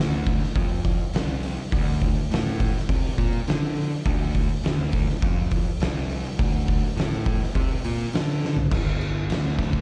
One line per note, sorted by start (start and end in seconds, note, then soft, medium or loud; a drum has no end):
0.00 0.39 D2 medium
0.00 snare loud
0.27 kick loud
0.27 open hi-hat medium
0.44 snare soft
0.55 0.97 F2 medium
0.55 kick loud
0.55 open hi-hat medium
0.85 kick medium
0.85 open hi-hat medium
1.13 1.56 C2 loud
1.13 snare loud
1.13 open hi-hat medium
1.43 open hi-hat medium
1.72 2.14 D2 loud
1.72 kick loud
1.72 open hi-hat loud
2.02 kick medium
2.02 open hi-hat medium
2.31 2.73 A2 medium
2.31 snare loud
2.31 open hi-hat medium
2.60 kick loud
2.60 open hi-hat medium
2.77 snare soft
2.89 3.10 C3 medium
2.89 kick loud
2.89 open hi-hat medium
3.18 3.39 A#2 loud
3.18 kick medium
3.18 open hi-hat medium
3.47 3.89 D3 loud
3.47 snare loud
3.47 open hi-hat medium
3.76 open hi-hat medium
4.05 4.47 D2 loud
4.05 kick loud
4.05 open hi-hat medium
4.35 kick medium
4.35 open hi-hat medium
4.63 5.06 D2 medium
4.63 snare loud
4.63 open hi-hat medium
4.92 kick medium
4.92 open hi-hat medium
5.10 snare soft
5.22 5.64 F2 loud
5.22 kick loud
5.22 open hi-hat medium
5.51 kick medium
5.51 open hi-hat medium
5.80 6.22 C2 loud
5.80 snare loud
5.80 open hi-hat medium
6.10 open hi-hat medium
6.39 6.80 D2 loud
6.39 kick loud
6.39 open hi-hat medium
6.68 kick medium
6.68 open hi-hat medium
6.97 7.38 A2 medium
6.97 snare loud
6.97 open hi-hat medium
7.26 kick loud
7.26 open hi-hat medium
7.43 snare soft
7.55 7.76 C3 loud
7.55 kick loud
7.55 open hi-hat medium
7.84 8.05 A#2 loud
7.84 open hi-hat medium
8.13 8.55 D3 loud
8.13 snare loud
8.13 open hi-hat medium
8.45 snare medium
8.57 floor tom medium
8.72 9.28 G1 loud
8.72 kick loud
8.72 crash loud
8.72 crash medium
9.01 crash medium
9.29 9.81 D2 medium
9.29 snare loud
9.29 crash medium
9.59 kick loud
9.59 snare soft
9.59 crash medium
9.73 kick medium